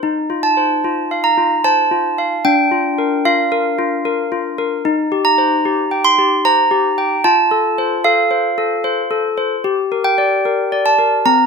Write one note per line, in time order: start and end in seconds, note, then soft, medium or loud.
0.03 2.41 D#4 medium
0.30 0.73 F4 soft
0.43 1.21 A5 medium
0.57 1.00 C5 soft
0.84 1.27 F4 soft
1.11 1.54 F5 soft
1.24 1.63 A#5 medium
1.37 1.81 F4 soft
1.64 2.07 C5 soft
1.64 2.42 A5 medium
1.91 2.34 F4 soft
2.18 2.45 F5 soft
2.45 4.82 D4 medium
2.45 3.22 G5 medium
2.72 3.15 F4 soft
2.98 3.41 A#4 soft
3.25 3.68 F4 soft
3.25 4.42 F5 medium
3.52 3.95 A#4 medium
3.79 4.21 F4 soft
4.05 4.48 A#4 soft
4.32 4.75 F4 soft
4.58 4.85 A#4 soft
4.85 7.20 D#4 medium
5.12 5.55 G4 soft
5.25 6.01 A#5 medium
5.38 5.81 C5 soft
5.65 6.08 G4 soft
5.91 6.34 G5 soft
6.05 6.43 C6 loud
6.18 6.61 G4 medium
6.45 6.87 C5 soft
6.45 7.22 A#5 medium
6.71 7.14 G4 medium
6.98 7.25 G5 medium
7.24 9.60 F4 medium
7.24 8.01 A5 medium
7.51 7.94 A4 soft
7.78 8.21 C5 medium
8.04 8.47 A4 soft
8.04 9.20 F5 medium
8.31 8.73 C5 soft
8.58 9.00 A4 soft
8.84 9.27 C5 medium
9.11 9.54 A4 medium
9.37 9.64 C5 soft
9.64 11.22 G4 medium
9.92 10.35 A#4 soft
10.04 10.82 G5 medium
10.18 10.61 D5 soft
10.45 10.88 A#4 soft
10.72 11.16 D5 soft
10.86 11.25 A5 medium
10.98 11.26 A#4 soft
11.26 11.46 C4 medium
11.26 11.46 A#5 medium